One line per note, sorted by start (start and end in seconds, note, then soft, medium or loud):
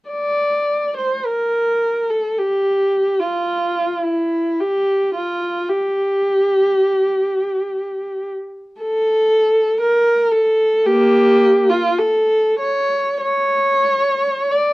0.10 0.93 D5 soft
0.97 1.26 C5 soft
1.26 2.10 A#4 medium
2.10 2.38 A4 soft
2.38 3.20 G4 soft
3.19 4.04 F4 medium
4.04 4.61 E4 soft
4.60 5.16 G4 soft
5.16 5.69 F4 medium
5.69 8.29 G4 medium
8.82 9.76 A4 medium
9.81 10.32 A#4 medium
10.32 10.86 A4 medium
10.86 11.66 A#3 medium
10.86 11.70 G4 medium
11.69 11.99 F4 medium
11.99 12.60 A4 medium
12.59 13.20 C#5 medium
13.21 14.49 C#5 medium
14.51 14.73 D5 soft